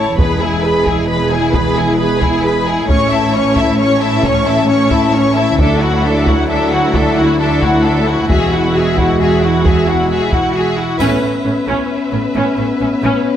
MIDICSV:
0, 0, Header, 1, 10, 480
1, 0, Start_track
1, 0, Key_signature, 3, "major"
1, 0, Tempo, 450789
1, 196, Time_signature, 3, 2, 24, 8
1, 14233, End_track
2, 0, Start_track
2, 0, Title_t, "Violin section"
2, 0, Program_c, 0, 48
2, 0, Note_on_c, 0, 81, 33
2, 192, Note_on_c, 0, 83, 44
2, 193, Note_off_c, 0, 81, 0
2, 417, Note_off_c, 0, 83, 0
2, 427, Note_on_c, 0, 80, 43
2, 672, Note_off_c, 0, 80, 0
2, 672, Note_on_c, 0, 83, 43
2, 914, Note_off_c, 0, 83, 0
2, 915, Note_on_c, 0, 80, 39
2, 1148, Note_on_c, 0, 83, 43
2, 1155, Note_off_c, 0, 80, 0
2, 1375, Note_off_c, 0, 83, 0
2, 1393, Note_on_c, 0, 80, 42
2, 1633, Note_on_c, 0, 83, 45
2, 1634, Note_off_c, 0, 80, 0
2, 1874, Note_off_c, 0, 83, 0
2, 1879, Note_on_c, 0, 80, 43
2, 2117, Note_off_c, 0, 80, 0
2, 2124, Note_on_c, 0, 83, 44
2, 2343, Note_off_c, 0, 83, 0
2, 2368, Note_on_c, 0, 80, 45
2, 2602, Note_off_c, 0, 80, 0
2, 2604, Note_on_c, 0, 83, 45
2, 2840, Note_off_c, 0, 83, 0
2, 2847, Note_on_c, 0, 80, 42
2, 3081, Note_off_c, 0, 80, 0
2, 3085, Note_on_c, 0, 85, 49
2, 3303, Note_off_c, 0, 85, 0
2, 3324, Note_on_c, 0, 81, 48
2, 3560, Note_off_c, 0, 81, 0
2, 3562, Note_on_c, 0, 85, 48
2, 3796, Note_on_c, 0, 81, 47
2, 3798, Note_off_c, 0, 85, 0
2, 4035, Note_off_c, 0, 81, 0
2, 4035, Note_on_c, 0, 85, 49
2, 4258, Note_off_c, 0, 85, 0
2, 4270, Note_on_c, 0, 81, 47
2, 4512, Note_off_c, 0, 81, 0
2, 4516, Note_on_c, 0, 85, 52
2, 4753, Note_on_c, 0, 81, 49
2, 4755, Note_off_c, 0, 85, 0
2, 4994, Note_off_c, 0, 81, 0
2, 4999, Note_on_c, 0, 85, 51
2, 5220, Note_off_c, 0, 85, 0
2, 5235, Note_on_c, 0, 81, 50
2, 5468, Note_on_c, 0, 85, 51
2, 5474, Note_off_c, 0, 81, 0
2, 5701, Note_on_c, 0, 81, 48
2, 5711, Note_off_c, 0, 85, 0
2, 5942, Note_on_c, 0, 76, 54
2, 5948, Note_off_c, 0, 81, 0
2, 6171, Note_off_c, 0, 76, 0
2, 6184, Note_on_c, 0, 78, 50
2, 6425, Note_on_c, 0, 76, 50
2, 6429, Note_off_c, 0, 78, 0
2, 6669, Note_off_c, 0, 76, 0
2, 6677, Note_on_c, 0, 78, 51
2, 6913, Note_on_c, 0, 76, 52
2, 6915, Note_off_c, 0, 78, 0
2, 7136, Note_off_c, 0, 76, 0
2, 7152, Note_on_c, 0, 78, 46
2, 7390, Note_on_c, 0, 76, 52
2, 7393, Note_off_c, 0, 78, 0
2, 7630, Note_on_c, 0, 78, 49
2, 7632, Note_off_c, 0, 76, 0
2, 7872, Note_off_c, 0, 78, 0
2, 7874, Note_on_c, 0, 76, 48
2, 8097, Note_off_c, 0, 76, 0
2, 8119, Note_on_c, 0, 78, 46
2, 8351, Note_on_c, 0, 76, 46
2, 8356, Note_off_c, 0, 78, 0
2, 8592, Note_off_c, 0, 76, 0
2, 8593, Note_on_c, 0, 78, 44
2, 8827, Note_on_c, 0, 76, 51
2, 8833, Note_off_c, 0, 78, 0
2, 9053, Note_off_c, 0, 76, 0
2, 9065, Note_on_c, 0, 78, 45
2, 9302, Note_on_c, 0, 76, 44
2, 9309, Note_off_c, 0, 78, 0
2, 9547, Note_off_c, 0, 76, 0
2, 9552, Note_on_c, 0, 78, 43
2, 9793, Note_off_c, 0, 78, 0
2, 9800, Note_on_c, 0, 76, 41
2, 10020, Note_off_c, 0, 76, 0
2, 10036, Note_on_c, 0, 78, 40
2, 10275, Note_off_c, 0, 78, 0
2, 10281, Note_on_c, 0, 76, 44
2, 10517, Note_off_c, 0, 76, 0
2, 10518, Note_on_c, 0, 78, 39
2, 10756, Note_off_c, 0, 78, 0
2, 10756, Note_on_c, 0, 76, 41
2, 10978, Note_off_c, 0, 76, 0
2, 10998, Note_on_c, 0, 78, 40
2, 11233, Note_on_c, 0, 76, 40
2, 11236, Note_off_c, 0, 78, 0
2, 11473, Note_off_c, 0, 76, 0
2, 11473, Note_on_c, 0, 78, 41
2, 11698, Note_on_c, 0, 76, 46
2, 11714, Note_off_c, 0, 78, 0
2, 14233, Note_off_c, 0, 76, 0
2, 14233, End_track
3, 0, Start_track
3, 0, Title_t, "Violin section"
3, 0, Program_c, 1, 48
3, 0, Note_on_c, 1, 73, 35
3, 193, Note_off_c, 1, 73, 0
3, 193, Note_on_c, 1, 71, 45
3, 417, Note_off_c, 1, 71, 0
3, 436, Note_on_c, 1, 68, 41
3, 672, Note_on_c, 1, 71, 45
3, 676, Note_off_c, 1, 68, 0
3, 914, Note_off_c, 1, 71, 0
3, 916, Note_on_c, 1, 68, 41
3, 1156, Note_off_c, 1, 68, 0
3, 1158, Note_on_c, 1, 71, 42
3, 1380, Note_off_c, 1, 71, 0
3, 1402, Note_on_c, 1, 68, 42
3, 1633, Note_on_c, 1, 71, 47
3, 1639, Note_off_c, 1, 68, 0
3, 1868, Note_on_c, 1, 68, 42
3, 1874, Note_off_c, 1, 71, 0
3, 2102, Note_on_c, 1, 71, 47
3, 2111, Note_off_c, 1, 68, 0
3, 2331, Note_off_c, 1, 71, 0
3, 2337, Note_on_c, 1, 68, 42
3, 2581, Note_on_c, 1, 71, 47
3, 2586, Note_off_c, 1, 68, 0
3, 2828, Note_off_c, 1, 71, 0
3, 2829, Note_on_c, 1, 68, 43
3, 3066, Note_on_c, 1, 73, 51
3, 3072, Note_off_c, 1, 68, 0
3, 3293, Note_off_c, 1, 73, 0
3, 3311, Note_on_c, 1, 76, 49
3, 3553, Note_off_c, 1, 76, 0
3, 3563, Note_on_c, 1, 73, 53
3, 3795, Note_on_c, 1, 76, 47
3, 3799, Note_off_c, 1, 73, 0
3, 4029, Note_on_c, 1, 73, 47
3, 4035, Note_off_c, 1, 76, 0
3, 4255, Note_off_c, 1, 73, 0
3, 4270, Note_on_c, 1, 76, 49
3, 4512, Note_off_c, 1, 76, 0
3, 4515, Note_on_c, 1, 73, 54
3, 4755, Note_off_c, 1, 73, 0
3, 4758, Note_on_c, 1, 76, 51
3, 4996, Note_off_c, 1, 76, 0
3, 5001, Note_on_c, 1, 73, 54
3, 5221, Note_off_c, 1, 73, 0
3, 5233, Note_on_c, 1, 76, 48
3, 5473, Note_off_c, 1, 76, 0
3, 5480, Note_on_c, 1, 73, 51
3, 5712, Note_on_c, 1, 76, 47
3, 5717, Note_off_c, 1, 73, 0
3, 5953, Note_off_c, 1, 76, 0
3, 5958, Note_on_c, 1, 69, 56
3, 6179, Note_off_c, 1, 69, 0
3, 6189, Note_on_c, 1, 66, 49
3, 6428, Note_on_c, 1, 69, 51
3, 6431, Note_off_c, 1, 66, 0
3, 6664, Note_on_c, 1, 66, 45
3, 6671, Note_off_c, 1, 69, 0
3, 6906, Note_on_c, 1, 69, 50
3, 6909, Note_off_c, 1, 66, 0
3, 7132, Note_off_c, 1, 69, 0
3, 7144, Note_on_c, 1, 66, 49
3, 7389, Note_off_c, 1, 66, 0
3, 7402, Note_on_c, 1, 69, 53
3, 7633, Note_on_c, 1, 66, 51
3, 7638, Note_off_c, 1, 69, 0
3, 7871, Note_on_c, 1, 69, 51
3, 7873, Note_off_c, 1, 66, 0
3, 8095, Note_off_c, 1, 69, 0
3, 8120, Note_on_c, 1, 66, 45
3, 8351, Note_on_c, 1, 69, 48
3, 8357, Note_off_c, 1, 66, 0
3, 8592, Note_off_c, 1, 69, 0
3, 8606, Note_on_c, 1, 66, 47
3, 8833, Note_on_c, 1, 68, 52
3, 8839, Note_off_c, 1, 66, 0
3, 9056, Note_off_c, 1, 68, 0
3, 9065, Note_on_c, 1, 66, 45
3, 9309, Note_off_c, 1, 66, 0
3, 9319, Note_on_c, 1, 68, 46
3, 9556, Note_off_c, 1, 68, 0
3, 9560, Note_on_c, 1, 66, 40
3, 9797, Note_off_c, 1, 66, 0
3, 9807, Note_on_c, 1, 68, 41
3, 10024, Note_off_c, 1, 68, 0
3, 10048, Note_on_c, 1, 66, 41
3, 10279, Note_on_c, 1, 68, 44
3, 10281, Note_off_c, 1, 66, 0
3, 10516, Note_off_c, 1, 68, 0
3, 10528, Note_on_c, 1, 66, 39
3, 10761, Note_off_c, 1, 66, 0
3, 10766, Note_on_c, 1, 68, 42
3, 10984, Note_off_c, 1, 68, 0
3, 10996, Note_on_c, 1, 66, 40
3, 11235, Note_off_c, 1, 66, 0
3, 11255, Note_on_c, 1, 68, 42
3, 11480, Note_on_c, 1, 66, 39
3, 11485, Note_off_c, 1, 68, 0
3, 11717, Note_off_c, 1, 66, 0
3, 11720, Note_on_c, 1, 71, 48
3, 14233, Note_off_c, 1, 71, 0
3, 14233, End_track
4, 0, Start_track
4, 0, Title_t, "Viola section"
4, 0, Program_c, 2, 48
4, 0, Note_on_c, 2, 64, 34
4, 192, Note_off_c, 2, 64, 0
4, 201, Note_on_c, 2, 68, 42
4, 422, Note_off_c, 2, 68, 0
4, 446, Note_on_c, 2, 64, 39
4, 681, Note_off_c, 2, 64, 0
4, 688, Note_on_c, 2, 68, 42
4, 922, Note_off_c, 2, 68, 0
4, 930, Note_on_c, 2, 64, 41
4, 1161, Note_on_c, 2, 68, 40
4, 1163, Note_off_c, 2, 64, 0
4, 1382, Note_off_c, 2, 68, 0
4, 1397, Note_on_c, 2, 64, 42
4, 1636, Note_off_c, 2, 64, 0
4, 1636, Note_on_c, 2, 68, 45
4, 1876, Note_off_c, 2, 68, 0
4, 1883, Note_on_c, 2, 64, 42
4, 2119, Note_off_c, 2, 64, 0
4, 2121, Note_on_c, 2, 68, 46
4, 2341, Note_off_c, 2, 68, 0
4, 2357, Note_on_c, 2, 64, 43
4, 2596, Note_off_c, 2, 64, 0
4, 2601, Note_on_c, 2, 68, 44
4, 2838, Note_off_c, 2, 68, 0
4, 2838, Note_on_c, 2, 64, 42
4, 3077, Note_off_c, 2, 64, 0
4, 3080, Note_on_c, 2, 61, 49
4, 3301, Note_off_c, 2, 61, 0
4, 3315, Note_on_c, 2, 64, 45
4, 3555, Note_off_c, 2, 64, 0
4, 3562, Note_on_c, 2, 61, 51
4, 3798, Note_off_c, 2, 61, 0
4, 3810, Note_on_c, 2, 64, 46
4, 4043, Note_off_c, 2, 64, 0
4, 4044, Note_on_c, 2, 61, 51
4, 4263, Note_off_c, 2, 61, 0
4, 4277, Note_on_c, 2, 64, 46
4, 4513, Note_on_c, 2, 61, 51
4, 4516, Note_off_c, 2, 64, 0
4, 4752, Note_on_c, 2, 64, 47
4, 4754, Note_off_c, 2, 61, 0
4, 4984, Note_on_c, 2, 61, 53
4, 4993, Note_off_c, 2, 64, 0
4, 5212, Note_off_c, 2, 61, 0
4, 5225, Note_on_c, 2, 64, 50
4, 5469, Note_off_c, 2, 64, 0
4, 5470, Note_on_c, 2, 61, 48
4, 5712, Note_off_c, 2, 61, 0
4, 5712, Note_on_c, 2, 64, 48
4, 5953, Note_off_c, 2, 64, 0
4, 5956, Note_on_c, 2, 62, 51
4, 6178, Note_off_c, 2, 62, 0
4, 6195, Note_on_c, 2, 64, 49
4, 6430, Note_on_c, 2, 62, 50
4, 6434, Note_off_c, 2, 64, 0
4, 6672, Note_off_c, 2, 62, 0
4, 6674, Note_on_c, 2, 64, 48
4, 6911, Note_on_c, 2, 62, 50
4, 6914, Note_off_c, 2, 64, 0
4, 7135, Note_off_c, 2, 62, 0
4, 7157, Note_on_c, 2, 64, 49
4, 7389, Note_on_c, 2, 62, 53
4, 7395, Note_off_c, 2, 64, 0
4, 7631, Note_off_c, 2, 62, 0
4, 7636, Note_on_c, 2, 64, 48
4, 7875, Note_off_c, 2, 64, 0
4, 7878, Note_on_c, 2, 62, 49
4, 8099, Note_off_c, 2, 62, 0
4, 8114, Note_on_c, 2, 64, 48
4, 8352, Note_on_c, 2, 62, 49
4, 8354, Note_off_c, 2, 64, 0
4, 8590, Note_on_c, 2, 64, 43
4, 8593, Note_off_c, 2, 62, 0
4, 8827, Note_on_c, 2, 66, 47
4, 8831, Note_off_c, 2, 64, 0
4, 9053, Note_off_c, 2, 66, 0
4, 9078, Note_on_c, 2, 64, 45
4, 9313, Note_on_c, 2, 66, 43
4, 9316, Note_off_c, 2, 64, 0
4, 9552, Note_on_c, 2, 64, 44
4, 9553, Note_off_c, 2, 66, 0
4, 9786, Note_on_c, 2, 66, 42
4, 9792, Note_off_c, 2, 64, 0
4, 10013, Note_off_c, 2, 66, 0
4, 10027, Note_on_c, 2, 64, 39
4, 10262, Note_on_c, 2, 66, 41
4, 10270, Note_off_c, 2, 64, 0
4, 10501, Note_on_c, 2, 64, 40
4, 10508, Note_off_c, 2, 66, 0
4, 10747, Note_off_c, 2, 64, 0
4, 10747, Note_on_c, 2, 66, 39
4, 10974, Note_off_c, 2, 66, 0
4, 10975, Note_on_c, 2, 64, 39
4, 11223, Note_on_c, 2, 66, 42
4, 11225, Note_off_c, 2, 64, 0
4, 11469, Note_off_c, 2, 66, 0
4, 11474, Note_on_c, 2, 64, 39
4, 11713, Note_on_c, 2, 61, 59
4, 11714, Note_off_c, 2, 64, 0
4, 11937, Note_off_c, 2, 61, 0
4, 11949, Note_on_c, 2, 61, 29
4, 12034, Note_off_c, 2, 61, 0
4, 12190, Note_on_c, 2, 61, 33
4, 12275, Note_off_c, 2, 61, 0
4, 12437, Note_on_c, 2, 61, 49
4, 12659, Note_off_c, 2, 61, 0
4, 12909, Note_on_c, 2, 61, 34
4, 12994, Note_off_c, 2, 61, 0
4, 13161, Note_on_c, 2, 61, 51
4, 13382, Note_off_c, 2, 61, 0
4, 13396, Note_on_c, 2, 61, 34
4, 13481, Note_off_c, 2, 61, 0
4, 13638, Note_on_c, 2, 61, 41
4, 13724, Note_off_c, 2, 61, 0
4, 13886, Note_on_c, 2, 61, 55
4, 14105, Note_off_c, 2, 61, 0
4, 14233, End_track
5, 0, Start_track
5, 0, Title_t, "French horn section"
5, 0, Program_c, 3, 60
5, 205, Note_on_c, 3, 64, 48
5, 209, Note_on_c, 3, 56, 50
5, 3037, Note_off_c, 3, 64, 0
5, 3039, Note_off_c, 3, 56, 0
5, 3084, Note_on_c, 3, 52, 55
5, 3085, Note_on_c, 3, 61, 53
5, 5916, Note_off_c, 3, 52, 0
5, 5917, Note_off_c, 3, 61, 0
5, 5954, Note_on_c, 3, 64, 59
5, 5958, Note_on_c, 3, 54, 57
5, 8791, Note_off_c, 3, 64, 0
5, 8793, Note_off_c, 3, 54, 0
5, 8831, Note_on_c, 3, 66, 55
5, 8841, Note_on_c, 3, 56, 56
5, 11435, Note_off_c, 3, 56, 0
5, 11473, Note_off_c, 3, 66, 0
5, 11726, Note_on_c, 3, 59, 56
5, 11727, Note_on_c, 3, 61, 52
5, 14233, Note_off_c, 3, 59, 0
5, 14233, Note_off_c, 3, 61, 0
5, 14233, End_track
6, 0, Start_track
6, 0, Title_t, "Cello section"
6, 0, Program_c, 4, 48
6, 0, Note_on_c, 4, 45, 41
6, 137, Note_off_c, 4, 45, 0
6, 192, Note_on_c, 4, 40, 50
6, 3030, Note_off_c, 4, 40, 0
6, 3069, Note_on_c, 4, 45, 56
6, 5908, Note_off_c, 4, 45, 0
6, 5948, Note_on_c, 4, 38, 62
6, 8788, Note_off_c, 4, 38, 0
6, 8823, Note_on_c, 4, 40, 54
6, 11496, Note_off_c, 4, 40, 0
6, 11707, Note_on_c, 4, 45, 60
6, 11934, Note_off_c, 4, 45, 0
6, 11952, Note_on_c, 4, 45, 31
6, 12037, Note_off_c, 4, 45, 0
6, 12189, Note_on_c, 4, 45, 34
6, 12274, Note_off_c, 4, 45, 0
6, 12425, Note_on_c, 4, 45, 41
6, 12510, Note_off_c, 4, 45, 0
6, 12910, Note_on_c, 4, 45, 34
6, 12995, Note_off_c, 4, 45, 0
6, 13149, Note_on_c, 4, 45, 53
6, 13234, Note_off_c, 4, 45, 0
6, 13383, Note_on_c, 4, 45, 39
6, 13468, Note_off_c, 4, 45, 0
6, 13631, Note_on_c, 4, 45, 43
6, 13717, Note_off_c, 4, 45, 0
6, 13866, Note_on_c, 4, 45, 59
6, 13951, Note_off_c, 4, 45, 0
6, 14233, End_track
7, 0, Start_track
7, 0, Title_t, "Timpani"
7, 0, Program_c, 5, 47
7, 197, Note_on_c, 5, 40, 58
7, 874, Note_off_c, 5, 40, 0
7, 8826, Note_on_c, 5, 40, 62
7, 9507, Note_off_c, 5, 40, 0
7, 14233, End_track
8, 0, Start_track
8, 0, Title_t, "Double bass section"
8, 0, Program_c, 6, 48
8, 0, Note_on_c, 6, 33, 44
8, 141, Note_off_c, 6, 33, 0
8, 190, Note_on_c, 6, 28, 52
8, 3030, Note_off_c, 6, 28, 0
8, 3070, Note_on_c, 6, 33, 58
8, 5909, Note_off_c, 6, 33, 0
8, 5945, Note_on_c, 6, 38, 61
8, 8786, Note_off_c, 6, 38, 0
8, 8833, Note_on_c, 6, 28, 57
8, 11501, Note_off_c, 6, 28, 0
8, 11705, Note_on_c, 6, 33, 62
8, 11933, Note_off_c, 6, 33, 0
8, 11951, Note_on_c, 6, 33, 29
8, 12036, Note_off_c, 6, 33, 0
8, 12188, Note_on_c, 6, 33, 32
8, 12273, Note_off_c, 6, 33, 0
8, 12435, Note_on_c, 6, 33, 47
8, 12521, Note_off_c, 6, 33, 0
8, 12915, Note_on_c, 6, 33, 33
8, 13000, Note_off_c, 6, 33, 0
8, 13149, Note_on_c, 6, 33, 51
8, 13234, Note_off_c, 6, 33, 0
8, 13392, Note_on_c, 6, 33, 35
8, 13477, Note_off_c, 6, 33, 0
8, 13634, Note_on_c, 6, 33, 38
8, 13719, Note_off_c, 6, 33, 0
8, 13877, Note_on_c, 6, 33, 61
8, 13962, Note_off_c, 6, 33, 0
8, 14233, End_track
9, 0, Start_track
9, 0, Title_t, "Taiko and cinematic ensemble drums"
9, 198, Note_on_c, 9, 41, 81
9, 304, Note_off_c, 9, 41, 0
9, 918, Note_on_c, 9, 41, 67
9, 1025, Note_off_c, 9, 41, 0
9, 1636, Note_on_c, 9, 41, 80
9, 1743, Note_off_c, 9, 41, 0
9, 2359, Note_on_c, 9, 41, 64
9, 2465, Note_off_c, 9, 41, 0
9, 3075, Note_on_c, 9, 41, 82
9, 3182, Note_off_c, 9, 41, 0
9, 3790, Note_on_c, 9, 41, 69
9, 3897, Note_off_c, 9, 41, 0
9, 4507, Note_on_c, 9, 41, 86
9, 4613, Note_off_c, 9, 41, 0
9, 5223, Note_on_c, 9, 41, 71
9, 5330, Note_off_c, 9, 41, 0
9, 5947, Note_on_c, 9, 41, 91
9, 6053, Note_off_c, 9, 41, 0
9, 6671, Note_on_c, 9, 41, 74
9, 6778, Note_off_c, 9, 41, 0
9, 7389, Note_on_c, 9, 41, 90
9, 7496, Note_off_c, 9, 41, 0
9, 8114, Note_on_c, 9, 41, 72
9, 8220, Note_off_c, 9, 41, 0
9, 8837, Note_on_c, 9, 41, 85
9, 8943, Note_off_c, 9, 41, 0
9, 9560, Note_on_c, 9, 41, 73
9, 9666, Note_off_c, 9, 41, 0
9, 10273, Note_on_c, 9, 41, 85
9, 10379, Note_off_c, 9, 41, 0
9, 10993, Note_on_c, 9, 41, 65
9, 11100, Note_off_c, 9, 41, 0
9, 11713, Note_on_c, 9, 41, 44
9, 11819, Note_off_c, 9, 41, 0
9, 12440, Note_on_c, 9, 41, 29
9, 12546, Note_off_c, 9, 41, 0
9, 14233, End_track
10, 0, Start_track
10, 0, Title_t, "Drums"
10, 11715, Note_on_c, 9, 81, 26
10, 11822, Note_off_c, 9, 81, 0
10, 14233, End_track
0, 0, End_of_file